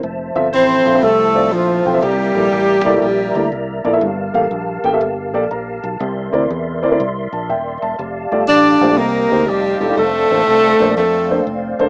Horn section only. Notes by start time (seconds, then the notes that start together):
0.53 E4 A4 C5
1.02 C4 E4 A4
1.51 A3 C4 F4
2.02 A#3 E4 G4
3.01 A#3 E4 G4
8.48 G4 A4 D5
8.98 D#4 G4 A#4
9.48 C4 D#4 G4
9.98 C4 D4 A4
10.97 C4 D4 A4